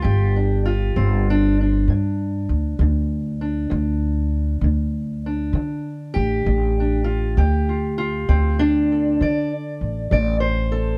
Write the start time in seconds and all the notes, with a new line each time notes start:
Already playing: F4
0.02 G1 G2 G4
0.36 D4
0.66 F4
0.96 G1 D3 C4
1.30 D4
1.61 D4
1.88 G2
2.49 D2
2.79 D2 D3
3.41 D4
3.70 D2
4.61 D2 D3
5.26 D4
5.53 D2 D3
6.14 A1 G4
6.46 A1 D3
6.80 D4
7.04 F4
7.37 D2 G4
7.69 F4
7.98 F4
8.28 D2 C4
8.59 D4
8.92 A4
9.21 D2 D3 D5
9.81 A1
10.11 A1 D3 D5
10.40 C5
10.72 A4